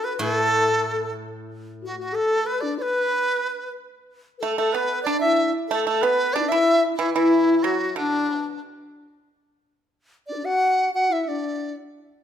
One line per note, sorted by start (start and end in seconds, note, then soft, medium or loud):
0.04 0.19 B4 medium
0.04 0.21 B4 medium
0.19 2.13 A2 medium
0.19 1.13 A4 loud
0.19 1.14 A4 medium
1.82 1.97 F#4 medium
1.82 1.99 F#4 medium
1.97 2.14 F#4 medium
1.97 2.17 F#4 medium
2.13 2.44 A4 medium
2.13 2.48 A4 medium
2.44 2.64 B4 medium
2.44 2.62 B4 medium
2.61 2.80 D4 medium
2.61 2.77 D5 medium
2.78 3.76 B4 medium
2.78 2.83 D5 medium
2.82 3.72 B4 medium
4.38 4.56 A4 medium
4.38 4.57 A4 medium
4.38 4.42 B4 medium
4.43 4.57 A3 medium
4.56 4.73 A3 medium
4.56 4.74 A4 medium
4.56 4.73 A4 medium
4.73 5.05 B3 medium
4.73 5.02 B4 medium
4.73 5.04 B4 medium
5.03 5.52 D4 medium
5.03 5.20 D5 loud
5.07 5.21 D4 medium
5.20 5.52 E4 medium
5.20 5.52 E5 loud
5.68 5.86 A3 medium
5.68 5.85 A4 medium
5.68 5.86 A4 medium
5.85 6.02 A3 medium
5.85 6.03 A4 medium
5.85 6.05 A4 medium
6.02 6.33 B3 medium
6.02 6.35 B4 medium
6.02 6.38 B4 medium
6.33 6.51 D4 medium
6.33 6.42 D4 medium
6.33 6.50 D5 medium
6.40 6.53 D4 medium
6.40 6.45 E4 medium
6.49 6.83 E4 medium
6.49 6.81 E4 medium
6.49 6.82 E5 medium
6.96 7.14 E3 medium
6.96 7.12 E4 medium
6.96 7.15 E4 medium
7.14 7.60 E3 medium
7.14 7.64 E4 medium
7.14 7.67 E4 medium
7.63 7.94 F#3 medium
7.63 7.98 F#4 medium
7.63 7.97 F#4 medium
7.96 8.38 D3 medium
7.96 8.62 D4 medium
7.96 8.59 D4 medium
8.38 8.58 B2 medium
10.27 10.33 D4 medium
10.27 10.47 D5 medium
10.32 10.43 D4 medium
10.32 10.37 B4 soft
10.43 10.90 F#4 medium
10.43 10.94 F#5 medium
10.93 11.11 F#4 medium
10.93 11.14 F#5 medium
11.10 11.26 E4 medium
11.10 11.30 E5 medium
11.27 11.72 D4 medium
11.27 11.76 D5 medium